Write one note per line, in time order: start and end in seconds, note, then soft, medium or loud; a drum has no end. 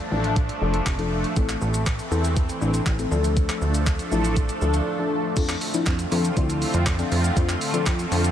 0.00 1.34 F3 medium
0.00 3.08 A3 medium
0.00 1.34 D4 medium
0.00 3.08 A4 medium
0.11 0.50 A1 medium
0.11 0.35 F3 medium
0.11 0.35 D4 medium
0.11 0.36 A4 loud
0.24 closed hi-hat medium
0.36 kick loud
0.36 closed hi-hat medium
0.49 closed hi-hat medium
0.61 0.81 F1 loud
0.61 0.79 F3 medium
0.61 0.80 D4 medium
0.61 0.80 A4 loud
0.74 closed hi-hat medium
0.86 1.25 F1 loud
0.86 kick loud
0.86 clap loud
0.86 closed hi-hat medium
0.99 1.17 F3 medium
0.99 1.17 D4 medium
0.99 1.17 A4 loud
0.99 closed hi-hat soft
1.24 closed hi-hat medium
1.36 1.56 A1 loud
1.36 1.72 E3 medium
1.36 3.10 E3 medium
1.36 1.72 C4 medium
1.36 3.10 C4 medium
1.36 1.72 A4 medium
1.36 kick loud
1.36 closed hi-hat medium
1.36 shaker medium
1.49 clap medium
1.49 closed hi-hat medium
1.49 shaker medium
1.61 2.00 A1 loud
1.61 shaker soft
1.74 closed hi-hat medium
1.74 shaker medium
1.86 kick loud
1.86 clap loud
1.86 closed hi-hat medium
1.86 shaker medium
1.99 closed hi-hat medium
1.99 shaker medium
2.11 2.50 E2 medium
2.11 2.35 E3 medium
2.11 2.35 C4 medium
2.11 2.35 A4 loud
2.11 shaker medium
2.24 closed hi-hat medium
2.24 shaker medium
2.37 kick loud
2.37 closed hi-hat medium
2.37 shaker medium
2.49 closed hi-hat medium
2.49 shaker medium
2.61 2.81 A1 loud
2.61 2.79 E3 medium
2.61 2.79 C4 medium
2.61 2.80 D4 loud
2.61 shaker soft
2.74 closed hi-hat medium
2.74 shaker medium
2.86 3.06 A1 loud
2.86 kick loud
2.86 clap loud
2.86 closed hi-hat medium
2.86 shaker medium
2.99 3.11 E3 medium
2.99 3.12 C4 medium
2.99 3.11 A4 loud
2.99 closed hi-hat soft
2.99 shaker soft
3.11 3.50 D2 loud
3.11 3.91 F3 medium
3.11 5.34 F3 medium
3.11 5.35 A3 medium
3.11 3.92 D4 medium
3.11 5.34 D4 medium
3.11 5.34 A4 medium
3.11 3.92 A4 loud
3.11 shaker medium
3.24 closed hi-hat medium
3.24 shaker medium
3.37 kick loud
3.37 closed hi-hat medium
3.37 shaker medium
3.49 clap medium
3.49 closed hi-hat medium
3.49 shaker medium
3.62 4.00 D2 loud
3.62 shaker soft
3.74 closed hi-hat medium
3.74 shaker medium
3.87 kick loud
3.87 clap loud
3.87 closed hi-hat medium
3.87 shaker medium
3.99 closed hi-hat medium
3.99 shaker medium
4.11 4.50 A1 medium
4.11 4.35 F3 medium
4.11 4.35 D4 medium
4.11 4.36 E4 loud
4.11 shaker medium
4.25 closed hi-hat medium
4.25 shaker medium
4.36 kick loud
4.36 closed hi-hat medium
4.36 shaker medium
4.49 closed hi-hat medium
4.49 shaker medium
4.62 4.81 D2 loud
4.62 4.79 F3 medium
4.62 4.80 D4 medium
4.62 4.80 A4 medium
4.62 shaker soft
4.74 closed hi-hat medium
4.74 shaker medium
4.99 5.17 F3 medium
4.99 5.17 D4 medium
4.99 5.17 A4 loud
5.36 5.56 F2 loud
5.36 8.31 D3 medium
5.36 5.54 F3 medium
5.36 8.31 A3 medium
5.36 5.54 C4 medium
5.36 8.31 C4 medium
5.36 5.55 D4 medium
5.36 8.31 F4 medium
5.36 5.55 A4 loud
5.36 kick loud
5.36 closed hi-hat medium
5.36 crash medium
5.36 shaker medium
5.49 clap medium
5.49 closed hi-hat medium
5.49 shaker medium
5.61 open hi-hat medium
5.61 shaker soft
5.74 5.92 F3 medium
5.74 5.92 C4 medium
5.74 5.92 D4 medium
5.74 5.92 E4 loud
5.74 closed hi-hat medium
5.74 shaker medium
5.86 6.06 F2 medium
5.86 kick loud
5.86 clap medium
5.86 clap loud
5.86 closed hi-hat medium
5.86 shaker medium
5.99 closed hi-hat medium
5.99 shaker medium
6.11 6.31 F2 loud
6.11 6.23 F3 medium
6.11 6.23 C4 medium
6.11 6.23 D4 medium
6.11 6.24 A4 loud
6.11 open hi-hat medium
6.11 shaker medium
6.25 closed hi-hat medium
6.25 shaker medium
6.36 6.66 D2 loud
6.36 6.66 F3 medium
6.36 6.66 C4 medium
6.36 6.66 D4 medium
6.36 6.67 E4 medium
6.36 kick loud
6.36 closed hi-hat medium
6.36 shaker medium
6.50 closed hi-hat medium
6.50 shaker medium
6.62 open hi-hat medium
6.62 shaker soft
6.74 7.03 F2 medium
6.74 closed hi-hat medium
6.74 shaker medium
6.86 kick loud
6.86 clap loud
6.86 clap medium
6.86 closed hi-hat medium
6.86 shaker medium
6.99 7.17 F3 medium
6.99 7.17 C4 medium
6.99 7.17 D4 medium
6.99 7.17 A4 loud
6.99 closed hi-hat soft
6.99 shaker soft
7.12 7.31 F2 medium
7.12 open hi-hat medium
7.12 shaker medium
7.24 closed hi-hat medium
7.24 shaker medium
7.36 7.56 F2 loud
7.36 7.54 F3 medium
7.36 7.54 C4 medium
7.36 7.54 D4 medium
7.36 7.55 F4 medium
7.36 kick loud
7.36 closed hi-hat medium
7.36 shaker medium
7.49 clap medium
7.49 closed hi-hat medium
7.49 shaker medium
7.61 open hi-hat medium
7.61 shaker medium
7.74 7.92 F3 medium
7.74 7.92 C4 medium
7.74 7.92 D4 medium
7.74 7.92 A4 loud
7.74 closed hi-hat medium
7.74 shaker medium
7.86 8.06 F2 medium
7.86 kick loud
7.86 clap medium
7.86 clap loud
7.86 closed hi-hat medium
7.86 shaker medium
7.99 closed hi-hat medium
7.99 shaker medium
8.11 8.31 F2 loud
8.11 8.23 F3 medium
8.11 8.23 C4 medium
8.11 8.23 D4 medium
8.11 8.24 A4 loud
8.11 open hi-hat medium
8.11 shaker medium
8.24 closed hi-hat medium
8.24 shaker medium